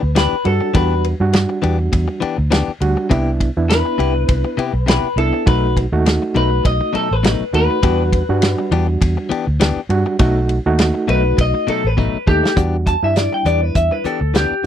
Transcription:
Already playing: clean electric guitar B4
0.03 fingered electric bass D2
0.15 clean electric guitar E3 B3 D4 G4 B4, snare, ride
0.33 muted fingered electric bass stroke
0.44 fingered electric bass G2, reed electric piano G3 D4 F#4, clean electric guitar A4, muted clean electric guitar stroke, ride
0.61 muted clean electric guitar stroke
0.74 fingered electric bass E2, clean electric guitar E3 B3 D4 G4 B4, reed electric piano G3 D4 F#4, kick, ride
1.04 ride
1.20 fingered electric bass G2, reed electric piano G3 D4 F#4
1.33 muted clean electric guitar stroke, snare, ride
1.49 muted clean electric guitar stroke
1.62 fingered electric bass E2, clean electric guitar E3 B3 D4 G4, ride
1.79 muted clean electric guitar stroke
1.92 fingered electric bass E2, muted clean electric guitar stroke, kick, ride
2.08 muted clean electric guitar stroke
2.20 clean electric guitar E3 B3 D4 G4, muted fingered electric bass stroke, ride
2.38 fingered electric bass D2, muted clean electric guitar stroke
2.51 clean electric guitar E3 B3 D4 G4, snare, ride
2.68 muted fingered electric bass stroke
2.81 fingered electric bass D2, reed electric piano G3 D4 F#4, muted clean electric guitar stroke, ride
2.97 muted clean electric guitar stroke
3.10 fingered electric bass C2, clean electric guitar C3 B3 E4 G4, reed electric piano B3 D4 E4, kick, ride
3.40 kick, ride
3.57 fingered electric bass E2, reed electric piano B3 D4 E4
3.70 clean electric guitar B4, muted clean electric guitar stroke, snare, ride
3.85 muted clean electric guitar stroke
3.98 fingered electric bass C2, clean electric guitar C3 B3 E4 G4, ride
4.15 muted clean electric guitar stroke
4.28 fingered electric bass C2, muted clean electric guitar stroke, kick, ride
4.45 muted clean electric guitar stroke
4.57 clean electric guitar C3 B3 E4 G4, muted fingered electric bass stroke, ride
4.73 fingered electric bass B1, muted clean electric guitar stroke
4.86 clean electric guitar C3 B3 E4 G4 B4, snare, ride
5.16 fingered electric bass C2, reed electric piano B3 D4 E4, clean electric guitar A4, muted clean electric guitar stroke, ride
5.33 muted clean electric guitar stroke
5.46 fingered electric bass B1, clean electric guitar B2 F#3 A3 D#4 B4, reed electric piano A3 D#4 F#4, kick, ride
5.77 kick, ride
5.92 fingered electric bass D#2, reed electric piano A3 D#4 F#4
6.06 muted clean electric guitar stroke, snare, ride
6.22 muted clean electric guitar stroke
6.35 fingered electric bass B1, clean electric guitar B2 F#3 A3 D#4 B4, ride
6.51 muted clean electric guitar stroke
6.64 fingered electric bass B1, clean electric guitar D#5, muted clean electric guitar stroke, kick, ride
6.81 muted clean electric guitar stroke
6.93 clean electric guitar B2 F#3 A3 D#4 A4, muted fingered electric bass stroke, ride
7.10 fingered electric bass A1, clean electric guitar B4, muted clean electric guitar stroke
7.23 clean electric guitar B2 F#3 A3 D#4, snare, ride
7.41 muted fingered electric bass stroke
7.53 fingered electric bass D#2, reed electric piano A3 D#4 F#4, clean electric guitar B4, muted clean electric guitar stroke, ride
7.70 muted clean electric guitar stroke
7.83 fingered electric bass E2, clean electric guitar E3 B3 D4 G4, reed electric piano G3 D4 F#4, kick, ride
8.13 kick, ride
8.29 fingered electric bass G2, reed electric piano G3 D4 F#4
8.42 muted clean electric guitar stroke, snare, ride
8.59 muted clean electric guitar stroke
8.71 fingered electric bass E2, clean electric guitar E3 B3 D4 G4, ride
8.88 muted clean electric guitar stroke
9.01 fingered electric bass E2, muted clean electric guitar stroke, kick, ride
9.17 muted clean electric guitar stroke
9.29 clean electric guitar E3 B3 D4 G4, muted fingered electric bass stroke, ride
9.47 fingered electric bass D2, muted clean electric guitar stroke
9.60 clean electric guitar E3 B3 D4 G4, snare, ride
9.76 muted fingered electric bass stroke
9.89 fingered electric bass G2, reed electric piano G3 D4 F#4, muted clean electric guitar stroke, ride
10.06 muted clean electric guitar stroke
10.19 fingered electric bass B1, clean electric guitar B2 F#3 A3 D#4, reed electric piano A3 D#4 F#4, kick, ride
10.49 ride
10.66 fingered electric bass D#2, reed electric piano A3 D#4 F#4
10.79 muted clean electric guitar stroke, snare, ride
10.94 muted clean electric guitar stroke
11.08 fingered electric bass B1, clean electric guitar B2 F#3 A3 D#4 B4, ride
11.24 muted clean electric guitar stroke
11.37 fingered electric bass B1, clean electric guitar D#5, muted clean electric guitar stroke, kick, ride
11.54 muted clean electric guitar stroke
11.67 clean electric guitar B2 F#3 A3 D#4 A4, muted fingered electric bass stroke, ride
11.84 fingered electric bass A1, clean electric guitar B4
11.97 clean electric guitar B2 F#3 A3 D#4, kick
12.14 muted fingered electric bass stroke
12.27 fingered electric bass D#2, reed electric piano A3 D#4 A4, clean electric guitar G4, muted clean electric guitar stroke, kick
12.43 muted clean electric guitar stroke, snare
12.56 fingered electric bass E2, clean electric guitar E3 B3 D4 G4, reed electric piano G3 D4 F#4, kick, closed hi-hat
12.87 clean electric guitar A5, kick, closed hi-hat
13.03 fingered electric bass G2, reed electric piano G3 D4 E4, clean electric guitar E5
13.16 clean electric guitar D5, muted clean electric guitar stroke, snare, closed hi-hat
13.33 clean electric guitar G5, muted clean electric guitar stroke
13.45 fingered electric bass E2, clean electric guitar E3 B3 D4 G4 D5, closed hi-hat
13.62 clean electric guitar B4, muted clean electric guitar stroke
13.75 fingered electric bass E2, clean electric guitar E5, muted clean electric guitar stroke, kick, closed hi-hat
13.91 clean electric guitar B4, muted clean electric guitar stroke
14.04 clean electric guitar E3 B3 D4 G4 A4, muted fingered electric bass stroke, closed hi-hat
14.21 fingered electric bass D2, muted clean electric guitar stroke
14.34 clean electric guitar E3 B3 D4 G4, snare, closed hi-hat
14.51 muted fingered electric bass stroke

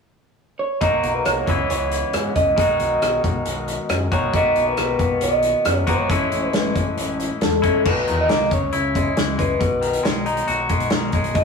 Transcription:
0.59 clean electric guitar C#5
0.81 picked electric bass B1, clean electric guitar B2 F#3 A#3 D#4 F#4 D#5, kick, closed hi-hat
1.04 picked electric bass B1, closed hi-hat
1.15 clean electric guitar B4
1.25 picked electric bass C2, clean electric guitar C#5, cross-stick, closed hi-hat
1.46 picked electric bass C#2, clean electric guitar C#3 E3 G#3 B3 E4, kick, closed hi-hat
1.70 picked electric bass C#2, clean electric guitar C#5, closed hi-hat
1.92 closed hi-hat
2.13 picked electric bass G#2, cross-stick, closed hi-hat
2.35 picked electric bass C#2, clean electric guitar D#5, kick, closed hi-hat
2.56 picked electric bass B1, clean electric guitar B2 D#3 G#3 D#4 F#4, kick, closed hi-hat
2.80 picked electric bass B1, closed hi-hat
3.01 picked electric bass B1, cross-stick, closed hi-hat
3.24 picked electric bass B1, kick, closed hi-hat
3.45 picked electric bass B1, closed hi-hat
3.68 closed hi-hat
3.89 picked electric bass F#2, cross-stick, closed hi-hat
4.12 picked electric bass B1, clean electric guitar B2 D#3 G#3 D#4 F#4 C#5, kick, closed hi-hat
4.33 picked electric bass B1, clean electric guitar B2 D#3 A#3 B3 F#4 D#5, kick, closed hi-hat
4.56 picked electric bass B1, closed hi-hat
4.68 clean electric guitar B4
4.77 picked electric bass B1, clean electric guitar B4, cross-stick, closed hi-hat
4.99 picked electric bass B1, kick, closed hi-hat
5.21 picked electric bass B1, clean electric guitar D#5, closed hi-hat
5.43 closed hi-hat
5.65 picked electric bass F#2, cross-stick, closed hi-hat
5.74 clean electric guitar C#5
5.87 picked electric bass G#1, clean electric guitar B2 D#3 A#3 B3 F#4 C#5, kick, closed hi-hat
6.09 picked electric bass A1, clean electric guitar A2 E3 G#3 C#4 E4, kick, closed hi-hat
6.32 picked electric bass A1, closed hi-hat
6.49 clean electric guitar B4
6.53 picked electric bass A1, snare, closed hi-hat
6.75 picked electric bass A1, kick, closed hi-hat
6.98 picked electric bass A1, closed hi-hat
7.20 closed hi-hat
7.41 picked electric bass E2, clean electric guitar A4, snare, closed hi-hat
7.62 picked electric bass A1, clean electric guitar A2 E3 G#3 C#4 E4, kick, closed hi-hat
7.85 picked electric bass B1, clean electric guitar B2 B4, kick, crash
8.07 picked electric bass E2, clean electric guitar D#3, closed hi-hat
8.21 clean electric guitar D#5
8.29 picked electric bass C2, clean electric guitar A#3, snare, closed hi-hat
8.51 picked electric bass C#2, clean electric guitar C#3 C#5, kick, closed hi-hat
8.73 picked electric bass C#2, clean electric guitar E4, closed hi-hat
8.95 clean electric guitar G#3, kick, closed hi-hat
9.17 picked electric bass C#2, clean electric guitar E3, snare, closed hi-hat
9.38 clean electric guitar G#3 B4, kick, closed hi-hat
9.60 picked electric bass B1, clean electric guitar B2, kick, closed hi-hat
9.82 clean electric guitar D#3, closed hi-hat
9.93 closed hi-hat
10.03 picked electric bass B1, clean electric guitar G#3, snare, closed hi-hat
10.26 clean electric guitar D#4, closed hi-hat
10.37 closed hi-hat
10.48 picked electric bass B1, clean electric guitar F#4, closed hi-hat
10.69 picked electric bass B1, clean electric guitar G#3, kick, closed hi-hat
10.80 closed hi-hat
10.90 picked electric bass B1, clean electric guitar D#3, snare, closed hi-hat
11.12 picked electric bass B1, clean electric guitar G#3, kick, closed hi-hat
11.24 closed hi-hat
11.35 picked electric bass B1, clean electric guitar B2 D#5, kick, closed hi-hat

